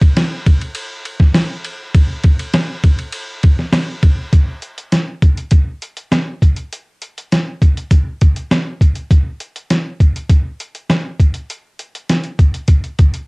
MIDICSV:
0, 0, Header, 1, 2, 480
1, 0, Start_track
1, 0, Tempo, 596421
1, 1570, Time_signature, 4, 2, 24, 8
1, 10684, End_track
2, 0, Start_track
2, 0, Title_t, "Drums"
2, 12, Note_on_c, 9, 36, 100
2, 18, Note_on_c, 9, 51, 50
2, 92, Note_off_c, 9, 36, 0
2, 98, Note_off_c, 9, 51, 0
2, 134, Note_on_c, 9, 51, 95
2, 135, Note_on_c, 9, 38, 112
2, 214, Note_off_c, 9, 51, 0
2, 216, Note_off_c, 9, 38, 0
2, 373, Note_on_c, 9, 36, 98
2, 374, Note_on_c, 9, 51, 61
2, 454, Note_off_c, 9, 36, 0
2, 455, Note_off_c, 9, 51, 0
2, 493, Note_on_c, 9, 51, 46
2, 574, Note_off_c, 9, 51, 0
2, 601, Note_on_c, 9, 51, 86
2, 681, Note_off_c, 9, 51, 0
2, 848, Note_on_c, 9, 51, 61
2, 928, Note_off_c, 9, 51, 0
2, 965, Note_on_c, 9, 36, 96
2, 972, Note_on_c, 9, 38, 39
2, 1045, Note_off_c, 9, 36, 0
2, 1052, Note_off_c, 9, 38, 0
2, 1083, Note_on_c, 9, 38, 122
2, 1089, Note_on_c, 9, 51, 80
2, 1163, Note_off_c, 9, 38, 0
2, 1170, Note_off_c, 9, 51, 0
2, 1325, Note_on_c, 9, 51, 64
2, 1405, Note_off_c, 9, 51, 0
2, 1566, Note_on_c, 9, 36, 118
2, 1566, Note_on_c, 9, 51, 75
2, 1646, Note_off_c, 9, 36, 0
2, 1646, Note_off_c, 9, 51, 0
2, 1799, Note_on_c, 9, 51, 54
2, 1804, Note_on_c, 9, 36, 89
2, 1879, Note_off_c, 9, 51, 0
2, 1884, Note_off_c, 9, 36, 0
2, 1926, Note_on_c, 9, 51, 53
2, 2007, Note_off_c, 9, 51, 0
2, 2041, Note_on_c, 9, 51, 87
2, 2043, Note_on_c, 9, 38, 106
2, 2122, Note_off_c, 9, 51, 0
2, 2123, Note_off_c, 9, 38, 0
2, 2283, Note_on_c, 9, 51, 61
2, 2284, Note_on_c, 9, 36, 92
2, 2364, Note_off_c, 9, 36, 0
2, 2364, Note_off_c, 9, 51, 0
2, 2405, Note_on_c, 9, 51, 47
2, 2485, Note_off_c, 9, 51, 0
2, 2515, Note_on_c, 9, 51, 82
2, 2595, Note_off_c, 9, 51, 0
2, 2761, Note_on_c, 9, 51, 59
2, 2766, Note_on_c, 9, 36, 92
2, 2842, Note_off_c, 9, 51, 0
2, 2846, Note_off_c, 9, 36, 0
2, 2888, Note_on_c, 9, 38, 38
2, 2969, Note_off_c, 9, 38, 0
2, 2998, Note_on_c, 9, 38, 122
2, 3004, Note_on_c, 9, 51, 77
2, 3078, Note_off_c, 9, 38, 0
2, 3085, Note_off_c, 9, 51, 0
2, 3241, Note_on_c, 9, 36, 93
2, 3241, Note_on_c, 9, 51, 64
2, 3322, Note_off_c, 9, 36, 0
2, 3322, Note_off_c, 9, 51, 0
2, 3482, Note_on_c, 9, 36, 98
2, 3482, Note_on_c, 9, 42, 75
2, 3563, Note_off_c, 9, 36, 0
2, 3563, Note_off_c, 9, 42, 0
2, 3719, Note_on_c, 9, 42, 57
2, 3800, Note_off_c, 9, 42, 0
2, 3846, Note_on_c, 9, 42, 55
2, 3926, Note_off_c, 9, 42, 0
2, 3962, Note_on_c, 9, 42, 92
2, 3963, Note_on_c, 9, 38, 85
2, 4042, Note_off_c, 9, 42, 0
2, 4044, Note_off_c, 9, 38, 0
2, 4204, Note_on_c, 9, 36, 85
2, 4205, Note_on_c, 9, 42, 57
2, 4285, Note_off_c, 9, 36, 0
2, 4285, Note_off_c, 9, 42, 0
2, 4326, Note_on_c, 9, 42, 47
2, 4406, Note_off_c, 9, 42, 0
2, 4433, Note_on_c, 9, 42, 84
2, 4440, Note_on_c, 9, 36, 87
2, 4514, Note_off_c, 9, 42, 0
2, 4520, Note_off_c, 9, 36, 0
2, 4684, Note_on_c, 9, 42, 60
2, 4764, Note_off_c, 9, 42, 0
2, 4803, Note_on_c, 9, 42, 51
2, 4883, Note_off_c, 9, 42, 0
2, 4923, Note_on_c, 9, 38, 100
2, 4930, Note_on_c, 9, 42, 74
2, 5004, Note_off_c, 9, 38, 0
2, 5010, Note_off_c, 9, 42, 0
2, 5168, Note_on_c, 9, 36, 77
2, 5170, Note_on_c, 9, 42, 65
2, 5248, Note_off_c, 9, 36, 0
2, 5251, Note_off_c, 9, 42, 0
2, 5282, Note_on_c, 9, 42, 46
2, 5363, Note_off_c, 9, 42, 0
2, 5413, Note_on_c, 9, 42, 78
2, 5493, Note_off_c, 9, 42, 0
2, 5647, Note_on_c, 9, 42, 59
2, 5728, Note_off_c, 9, 42, 0
2, 5777, Note_on_c, 9, 42, 51
2, 5858, Note_off_c, 9, 42, 0
2, 5893, Note_on_c, 9, 42, 95
2, 5895, Note_on_c, 9, 38, 90
2, 5974, Note_off_c, 9, 42, 0
2, 5976, Note_off_c, 9, 38, 0
2, 6131, Note_on_c, 9, 36, 85
2, 6136, Note_on_c, 9, 42, 59
2, 6212, Note_off_c, 9, 36, 0
2, 6216, Note_off_c, 9, 42, 0
2, 6256, Note_on_c, 9, 42, 46
2, 6337, Note_off_c, 9, 42, 0
2, 6366, Note_on_c, 9, 36, 87
2, 6366, Note_on_c, 9, 42, 90
2, 6446, Note_off_c, 9, 36, 0
2, 6447, Note_off_c, 9, 42, 0
2, 6609, Note_on_c, 9, 42, 61
2, 6613, Note_on_c, 9, 36, 74
2, 6690, Note_off_c, 9, 42, 0
2, 6694, Note_off_c, 9, 36, 0
2, 6730, Note_on_c, 9, 42, 49
2, 6810, Note_off_c, 9, 42, 0
2, 6851, Note_on_c, 9, 38, 103
2, 6857, Note_on_c, 9, 42, 80
2, 6931, Note_off_c, 9, 38, 0
2, 6937, Note_off_c, 9, 42, 0
2, 7090, Note_on_c, 9, 36, 81
2, 7096, Note_on_c, 9, 42, 66
2, 7171, Note_off_c, 9, 36, 0
2, 7176, Note_off_c, 9, 42, 0
2, 7207, Note_on_c, 9, 42, 45
2, 7287, Note_off_c, 9, 42, 0
2, 7329, Note_on_c, 9, 36, 96
2, 7332, Note_on_c, 9, 42, 78
2, 7410, Note_off_c, 9, 36, 0
2, 7413, Note_off_c, 9, 42, 0
2, 7567, Note_on_c, 9, 42, 59
2, 7648, Note_off_c, 9, 42, 0
2, 7693, Note_on_c, 9, 42, 50
2, 7773, Note_off_c, 9, 42, 0
2, 7809, Note_on_c, 9, 42, 94
2, 7811, Note_on_c, 9, 38, 88
2, 7890, Note_off_c, 9, 42, 0
2, 7892, Note_off_c, 9, 38, 0
2, 8050, Note_on_c, 9, 36, 82
2, 8052, Note_on_c, 9, 42, 59
2, 8131, Note_off_c, 9, 36, 0
2, 8133, Note_off_c, 9, 42, 0
2, 8177, Note_on_c, 9, 42, 49
2, 8257, Note_off_c, 9, 42, 0
2, 8286, Note_on_c, 9, 36, 87
2, 8286, Note_on_c, 9, 42, 87
2, 8367, Note_off_c, 9, 36, 0
2, 8367, Note_off_c, 9, 42, 0
2, 8532, Note_on_c, 9, 42, 61
2, 8613, Note_off_c, 9, 42, 0
2, 8651, Note_on_c, 9, 42, 48
2, 8731, Note_off_c, 9, 42, 0
2, 8771, Note_on_c, 9, 38, 101
2, 8777, Note_on_c, 9, 42, 79
2, 8851, Note_off_c, 9, 38, 0
2, 8857, Note_off_c, 9, 42, 0
2, 9011, Note_on_c, 9, 36, 74
2, 9014, Note_on_c, 9, 42, 65
2, 9091, Note_off_c, 9, 36, 0
2, 9095, Note_off_c, 9, 42, 0
2, 9127, Note_on_c, 9, 42, 47
2, 9207, Note_off_c, 9, 42, 0
2, 9255, Note_on_c, 9, 42, 76
2, 9336, Note_off_c, 9, 42, 0
2, 9491, Note_on_c, 9, 42, 59
2, 9571, Note_off_c, 9, 42, 0
2, 9618, Note_on_c, 9, 42, 52
2, 9698, Note_off_c, 9, 42, 0
2, 9734, Note_on_c, 9, 42, 98
2, 9735, Note_on_c, 9, 38, 89
2, 9814, Note_off_c, 9, 42, 0
2, 9816, Note_off_c, 9, 38, 0
2, 9847, Note_on_c, 9, 42, 32
2, 9928, Note_off_c, 9, 42, 0
2, 9971, Note_on_c, 9, 36, 80
2, 9973, Note_on_c, 9, 42, 57
2, 10052, Note_off_c, 9, 36, 0
2, 10054, Note_off_c, 9, 42, 0
2, 10093, Note_on_c, 9, 42, 46
2, 10173, Note_off_c, 9, 42, 0
2, 10202, Note_on_c, 9, 42, 83
2, 10206, Note_on_c, 9, 36, 83
2, 10283, Note_off_c, 9, 42, 0
2, 10286, Note_off_c, 9, 36, 0
2, 10332, Note_on_c, 9, 42, 30
2, 10412, Note_off_c, 9, 42, 0
2, 10451, Note_on_c, 9, 42, 64
2, 10454, Note_on_c, 9, 36, 78
2, 10532, Note_off_c, 9, 42, 0
2, 10535, Note_off_c, 9, 36, 0
2, 10572, Note_on_c, 9, 42, 51
2, 10652, Note_off_c, 9, 42, 0
2, 10684, End_track
0, 0, End_of_file